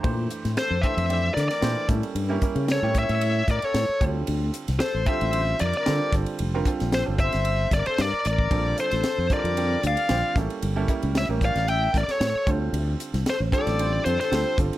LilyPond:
<<
  \new Staff \with { instrumentName = "Lead electric guitar" } { \time 4/4 \key bes \lydian \tempo 4 = 114 r4 c''8 e''4 d''16 d''8. r8 | r4 cis''8 e''4 d''16 cis''8. r8 | r4 c''8 e''4 d''16 d''8. r8 | r4 c''8 e''4 d''16 c''16 d''8 d''8~ |
d''8 c''4 d''4 f''4 r8 | r4 e''8 f''8 g''8 d''16 cis''8. r8 | r4 c''8 d''4 c''16 c''8. r8 | }
  \new Staff \with { instrumentName = "Flute" } { \time 4/4 \key bes \lydian r4 a'8 c''4 bes'16 bes'8. r8 | r4 a'8 cis''4 bes'16 a'8. r8 | r4 a'8 c''4 bes'16 bes'8. r8 | r4 a'8 c''4 bes'16 a'16 bes'8 bes'8~ |
bes'8 a'4 bes'4 d''4 r8 | r4 cis''8 d''8 e''8 bes'16 a'8. r8 | r4 a'8 a'4 a'16 a'8. r8 | }
  \new Staff \with { instrumentName = "Grand piano" } { \time 4/4 \key bes \lydian <e a d' g' c''>4~ <e a d' g' c''>16 r16 <e a d' g' a'>8 <e a d' g' d''>4 <e a d' g' c''>8 <g bes cis' e' a'>8~ | <g bes cis' e' a'>16 <g bes cis' e' bes'>16 <g bes cis' e' bes'>8. <g bes cis' e' g'>4.~ <g bes cis' e' g'>16 r8 <d g c' f' a'>8~ | <d g c' f' a'>4~ <d g c' f' a'>16 r16 <d g c' f' a'>8 <d g c' f' c''>4 <d g c' f' a'>8 <d g c' f' a'>8~ | <d g c' f' a'>16 <d g c' f' bes'>16 <d g c' f' a'>8. <d g c' f' a'>4.~ <d g c' f' a'>16 r4 |
<d g c' f' a'>4~ <d g c' f' a'>16 r16 <d g c' f' a'>8 <d g c' f' a'>4 <d g c' f' g'>8 <g bes cis' e' a'>8~ | <g bes cis' e' a'>16 <g bes cis' e' a'>16 <g bes cis' e' bes'>8. <g bes cis' e' bes'>4.~ <g bes cis' e' bes'>16 r8 <d g c' f' a'>8~ | <d g c' f' a'>4~ <d g c' f' a'>16 r16 <d g c' f' a'>8 <d g c' f' c''>4 <d g c' f' a'>8 <d g c' f' a'>8 | }
  \new Staff \with { instrumentName = "Fretless electric bass" } { \clef bass \time 4/4 \key bes \lydian bes,8 r16 a,16 r16 f,16 r16 f,8. d16 r16 bes,16 r16 a,16 r16 | g,8 r16 cis8 a,8 a,8. a,16 r16 a,16 r16 d,8 | d,8 r16 c,16 r16 a,,16 r16 a,,8. f,16 r16 d16 r16 g,,16 r16 | f,,8 r16 bes,,8 g,,8 g,,8. g,,16 r16 g,16 r16 a,,8 |
bes,,8 r16 a,,16 r16 f,16 r16 f,8. d,16 r16 bes,,16 r16 a,,16 r16 | g,,8 r16 cis,8 a,,8 a,,8. a,,16 r16 a,16 r16 d,8 | d,8 r16 c,16 r16 a,,16 r16 a,,8. f,16 r16 d,16 r16 g,,16 r16 | }
  \new DrumStaff \with { instrumentName = "Drums" } \drummode { \time 4/4 <bd cymr>8 <hhp cymr>16 <cymr sn>16 <cymr sn>8 <hhp bd cymr>16 cymr16 cymr8 <hhp cymr sn>16 <cymr sn>16 <cymr sn>8 <hhp bd cymr sn>16 cymr16 | cymr8 <hhp bd cymr>16 cymr16 <cymr sn>8 <hhp bd cymr>16 cymr16 cymr8 <hhp bd cymr>16 cymr16 <cymr sn>8 <hhp bd cymr>8 | cymr8 <hhp cymr>16 <cymr sn>16 <cymr sn>8 <hhp bd cymr>16 cymr16 cymr8 <hhp cymr>16 cymr16 <cymr sn>8 <hhp bd cymr sn>16 cymr16 | cymr8 <hhp bd cymr>16 <cymr sn>16 <cymr sn>8 <hhp bd cymr>16 <cymr sn>16 cymr8 <hhp bd cymr sn>16 cymr16 <cymr sn>8 <hhp cymr>16 bd16 |
<bd cymr>8 <hhp cymr>16 <cymr sn>16 <cymr sn>8 <hhp bd cymr>16 cymr16 cymr8 <hhp cymr>16 cymr16 <cymr sn>8 <hhp bd cymr sn>16 cymr16 | cymr8 <hhp bd cymr>16 cymr16 <cymr sn>8 <hhp bd cymr>16 <cymr sn>16 cymr8 <hhp bd cymr sn>16 <cymr sn>16 <cymr sn>8 <hhp bd cymr>8 | cymr8 <hhp cymr>16 <cymr sn>16 <cymr sn>8 <hhp bd cymr>16 <cymr sn>16 cymr8 <hhp cymr>16 <cymr sn>16 <cymr sn>8 <hhp bd cymr>16 cymr16 | }
>>